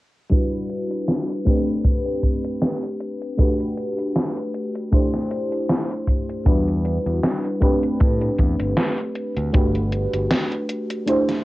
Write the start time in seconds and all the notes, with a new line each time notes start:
0.29 G3 D4 E4 F#4 B4, kick, closed hi-hat
0.53 closed hi-hat
0.70 closed hi-hat
0.91 closed hi-hat
1.08 snare, closed hi-hat
1.29 closed hi-hat
1.45 A3 C4 D4 G4 B4, kick, closed hi-hat
1.67 closed hi-hat
1.85 kick, closed hi-hat
2.06 closed hi-hat
2.23 kick, closed hi-hat
2.45 closed hi-hat
2.62 snare, closed hi-hat
2.83 closed hi-hat
3.00 closed hi-hat
3.22 closed hi-hat
3.37 A3 D4 F#4 G4 B4, kick, closed hi-hat
3.60 closed hi-hat
3.77 closed hi-hat
3.99 closed hi-hat
4.16 snare, closed hi-hat
4.37 closed hi-hat
4.54 closed hi-hat
4.75 closed hi-hat
4.91 A3 D4 E4 G4 C5, kick, closed hi-hat
5.14 snare, closed hi-hat
5.31 closed hi-hat
5.52 closed hi-hat
5.69 snare, closed hi-hat
5.91 closed hi-hat
6.07 kick, closed hi-hat
6.29 closed hi-hat
6.45 E2 G3 D4 E4 F#4 B4, kick, closed hi-hat
6.68 closed hi-hat
6.85 closed hi-hat
7.06 E2, closed hi-hat
7.23 snare, closed hi-hat
7.44 closed hi-hat
7.60 A3 C4 D4 G4 B4, kick, closed hi-hat
7.83 closed hi-hat
8.00 A2, kick, closed hi-hat
8.21 closed hi-hat
8.38 E2, kick, closed hi-hat
8.60 G1, closed hi-hat
8.77 snare, closed hi-hat
8.98 closed hi-hat
9.15 closed hi-hat
9.37 D2, closed hi-hat
9.52 G1 A3 D4 F#4 G4 B4, kick, closed hi-hat
9.75 closed hi-hat
9.92 closed hi-hat
10.13 G1, closed hi-hat
10.31 snare, closed hi-hat
10.52 closed hi-hat
10.69 closed hi-hat
10.90 closed hi-hat
11.06 A3 D4 E4 G4 C5, closed hi-hat
11.29 snare, closed hi-hat